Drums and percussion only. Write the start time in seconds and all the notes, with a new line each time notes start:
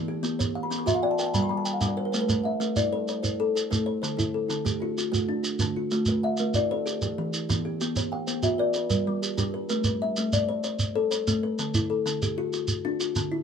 0.24 shekere
0.40 shekere
0.72 shekere
0.87 shekere
1.19 shekere
1.34 shekere
1.65 shekere
1.81 shekere
2.14 shekere
2.29 shekere
2.61 shekere
2.76 shekere
3.08 shekere
3.24 shekere
3.57 shekere
3.72 shekere
4.04 shekere
4.19 shekere
4.50 shekere
4.66 shekere
4.98 shekere
5.14 shekere
5.44 shekere
5.59 shekere
5.91 shekere
6.06 shekere
6.37 shekere
6.54 shekere
6.87 shekere
7.02 shekere
7.33 shekere
7.50 shekere
7.81 shekere
7.96 shekere
8.27 shekere
8.43 shekere
8.73 shekere
8.90 shekere
9.23 shekere
9.38 shekere
9.69 shekere
9.84 shekere
10.16 shekere
10.33 shekere
10.64 shekere
10.79 shekere
11.11 shekere
11.27 shekere
11.59 shekere
11.74 shekere
12.06 shekere
12.22 shekere
12.53 shekere
12.68 shekere
13.00 shekere
13.16 shekere